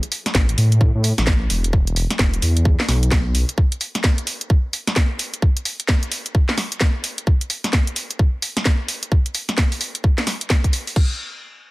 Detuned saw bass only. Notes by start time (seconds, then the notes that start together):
0.35 A1
0.58 A2
0.95 A2
1.18 A1
1.50 E1
2.19 E1
2.42 E2
2.88 B1